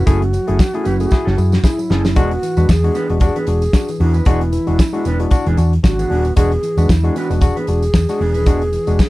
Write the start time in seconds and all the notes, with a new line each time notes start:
0.06 F#1 A3 C#4 E4 F#4 G#4 A4, kick, closed hi-hat, tambourine
0.22 muted clean electric guitar stroke, closed hi-hat
0.33 F#3, muted clean electric guitar stroke, closed hi-hat, tambourine
0.47 F#1 A3 C#4 E4 G#4 A4, closed hi-hat
0.59 muted clean electric guitar stroke, kick, snare, tambourine
0.73 A3 C#4 E4 G#4 A4, closed hi-hat
0.84 F#1 F#3 C#4 E4 B4, closed hi-hat, tambourine
1.00 A3 E4 G#4, muted clean electric guitar stroke, closed hi-hat, tambourine
1.11 E4 G#4, muted clean electric guitar stroke, kick, snare, tambourine
1.25 F#1 F#3 C#4 E4 A4, snare
1.37 F#2 E4 G#4, muted clean electric guitar stroke, tambourine
1.52 muted clean electric guitar stroke, snare, tambourine
1.63 E4 G#4, muted clean electric guitar stroke, kick, snare, tambourine
1.78 F#3, muted clean electric guitar stroke, tambourine
1.90 F#1 C#4 E4 G#4 A4, snare
2.04 muted clean electric guitar stroke, snare, tambourine
2.16 E1 G#3 B3 D4 F#4 G#4, kick, closed hi-hat, tambourine
2.31 muted clean electric guitar stroke, closed hi-hat
2.43 E3, muted clean electric guitar stroke, closed hi-hat, tambourine
2.57 E2 G#3 B3 D4 F#4 B4, closed hi-hat, tambourine
2.69 E2 G#4, muted clean electric guitar stroke, kick, snare, tambourine
2.83 G#3 B3 D4 F#4 G#4, closed hi-hat
2.94 E3 B3 D4 B4, closed hi-hat, tambourine
3.09 E1 G#3 D4 F#4, muted clean electric guitar stroke, closed hi-hat
3.20 D4 F#4 G#4, muted clean electric guitar stroke, kick, closed hi-hat, tambourine
3.36 E3 B3 D4 B4, closed hi-hat
3.47 E1 D4 F#4, muted clean electric guitar stroke, closed hi-hat, tambourine
3.62 muted clean electric guitar stroke, closed hi-hat, tambourine
3.73 D4 F#4, muted clean electric guitar stroke, kick, snare, tambourine
3.88 E3, muted clean electric guitar stroke, closed hi-hat, tambourine
4.00 E2 B3 D4 E4 F#4 G#4, open hi-hat
4.14 B3 D4 B4, closed hi-hat, tambourine
4.25 E1 G#3 B3 D4 E4 F#4 G#4, kick, closed hi-hat, tambourine
4.41 muted clean electric guitar stroke, closed hi-hat
4.53 E3, muted clean electric guitar stroke, closed hi-hat, tambourine
4.66 E1 G#3 B3 D4 F#4 G#4, closed hi-hat
4.79 muted clean electric guitar stroke, kick, snare, tambourine
4.93 G#3 D4 F#4 G#4, closed hi-hat
4.97 B3
5.05 E1 E3 B3 D4 B4, closed hi-hat, tambourine
5.19 G#3 D4 F#4, muted clean electric guitar stroke, closed hi-hat
5.31 D4 F#4, muted clean electric guitar stroke, kick, closed hi-hat, tambourine
5.46 E1 E3 B3 D4 G#4, closed hi-hat
5.57 E2 D4 F#4, muted clean electric guitar stroke, closed hi-hat, tambourine
5.73 muted clean electric guitar stroke, closed hi-hat
5.83 G#1 D4 F#4, muted clean electric guitar stroke, kick, snare, tambourine
5.99 E3 B3 D4 G#4, closed hi-hat, tambourine
6.10 D#1 B3 D4 F#4 G#4, open hi-hat
6.25 muted clean electric guitar stroke, closed hi-hat, tambourine
6.36 E1 G#3 B3 D4 F#4 G#4, kick, closed hi-hat, tambourine
6.51 muted clean electric guitar stroke, closed hi-hat
6.63 E3, muted clean electric guitar stroke, closed hi-hat, tambourine
6.77 E2 G#3 B3 D4 F#4 B4, closed hi-hat, tambourine
6.89 E2 E4, muted clean electric guitar stroke, kick, snare, tambourine
7.04 G#3 B3 D4 F#4 G#4, closed hi-hat
7.16 E3 B3 D4 F#4 B4, closed hi-hat, tambourine
7.30 E1 G#3 D4 F#4, muted clean electric guitar stroke, closed hi-hat, tambourine
7.41 D4 F#4 G#4, muted clean electric guitar stroke, kick, closed hi-hat, tambourine
7.56 E3 B3 D4 B4, closed hi-hat
7.67 E1 D4 F#4, muted clean electric guitar stroke, closed hi-hat, tambourine
7.82 muted clean electric guitar stroke, closed hi-hat, tambourine
7.94 E2, muted clean electric guitar stroke, kick, snare, tambourine
8.09 G#3 D4 F#4, muted clean electric guitar stroke, snare, closed hi-hat, tambourine
8.19 E1 B3 D4 G#4, open hi-hat
8.34 D#1 E3 B3 D4 B4, closed hi-hat, tambourine
8.46 E1 G#3 B3 D4 F#4 G#4, kick, closed hi-hat, tambourine
8.61 muted clean electric guitar stroke, closed hi-hat
8.72 E3, muted clean electric guitar stroke, closed hi-hat, tambourine
8.87 E1 G#3 B3 D4 F#4 G#4, closed hi-hat, tambourine
8.99 muted clean electric guitar stroke, kick, snare, tambourine